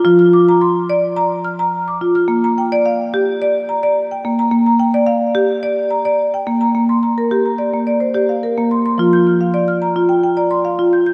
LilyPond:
<<
  \new Staff \with { instrumentName = "Marimba" } { \time 4/4 \key bes \major \tempo 4 = 108 << { f'''16 f'''16 d'''8 c'''8. r8. f'''8. d'''8 f'''16~ | f'''16 bes''16 g''8 f''8. r8. bes''8. g''8 bes''16~ | bes''16 bes''16 g''8 f''8. r8. bes''8. g''8 bes''16~ | bes''16 c'''16 bes''16 bes'8 bes''16 d''8 d''16 c''16 d''16 f''16 bes'8 c'''16 c'''16~ |
c'''16 g'''16 f'''16 f''8 f'''16 bes''8 g''16 g''16 bes''16 c'''16 f''8 g'''16 g'''16 | } \\ { f'8 r16 bes''8 r16 d''8 bes''8 r16 bes''8 r16 f'8 | r8. d''8 r16 g'8 d''8 r16 d''8 r16 bes8 | r8. d''8 r16 g'8 d''8 r16 d''8 r16 bes8 | bes8 r8 g'8 r16 bes8 r16 g'8 r16 bes8 r16 |
f'8 r8 d''8 r16 f'8 r16 d''8 r16 f'8 r16 | } >> }
  \new Staff \with { instrumentName = "Marimba" } { \clef bass \time 4/4 \key bes \major f1 | bes1 | bes1 | r1 |
f1 | }
>>